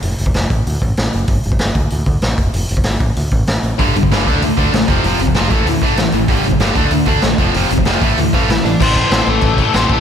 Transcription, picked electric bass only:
X:1
M:4/4
L:1/8
Q:1/4=192
K:Am
V:1 name="Picked electric bass" clef=bass
F,,, F,,, F,,, A,,, D,, A,,, A,,, ^F,,, | G,,, G,,, G,,, D,, D,, D,, A,,, F,,, | F,,, F,,, _A,,, =A,,, D,, A,,, A,,, A,,, | G,,, G,,, G,,, D,, D,, D,, A,,, F,,, |
F,,, F,,, F,,, A,,, D,, A,,, A,,, A,,, | G,,, G,,, G,,, D,, D,, D,, A,,, F,,, | F,,, F,,, F,,, A,,, D,, A,,, A,,, A,,, | A,,,2 A,,, A,,, A,,,2 A,,, A,,, |]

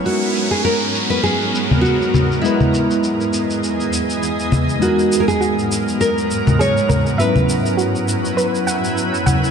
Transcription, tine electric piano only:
X:1
M:4/4
L:1/8
Q:"Swing 16ths" 1/4=101
K:G#m
V:1 name="Tine electric piano"
[G,B,DFA]8 | [G,B,EBd]8 | [G,B,DFA]8 | [F,B,CEB]8 |]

